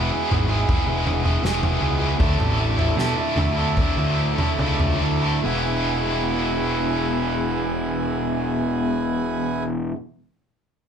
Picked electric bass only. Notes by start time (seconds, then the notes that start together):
Already playing: E1
0.31 G#1
0.87 E1
1.43 E1
1.81 C#2
2.20 D2
2.39 A1
2.96 B2
3.36 D2
3.97 D2
4.58 C#2
5.00 D2
5.44 E1